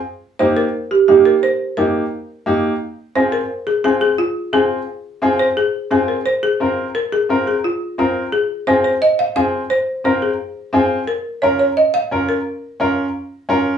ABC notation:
X:1
M:4/4
L:1/16
Q:1/4=174
K:Fm
V:1 name="Marimba"
z4 c2 B4 G2 G2 B2 | c4 B8- B2 z2 | z4 c2 B4 A2 A2 A2 | F4 A8- A2 c2 |
A4 A2 B2 c2 A4 z2 | B2 A4 A2 F4 F3 z | A4 c2 c2 e2 f2 f4 | c4 c2 A6 z4 |
B4 d2 d2 e2 f4 B2- | B2 z12 z2 |]
V:2 name="Upright piano"
z4 [B,EG]2 z6 [B,EG]2 z2 | z4 [B,EG]2 z6 [B,EG]2 z2 | z4 [CFA]2 z6 [CFA]2 z2 | z4 [CFA]2 z6 [CFA]2 z2 |
z4 [CFA]2 z6 [CFB]2 z2 | z4 [CFB]2 z6 [CFB]2 z2 | z4 [CFA]2 z6 [CFA]2 z2 | z4 [CFB]2 z6 [CFA]2 z2 |
z4 [DFB]2 z6 [DFB]2 z2 | z4 [DFB]2 z6 [DFB]2 z2 |]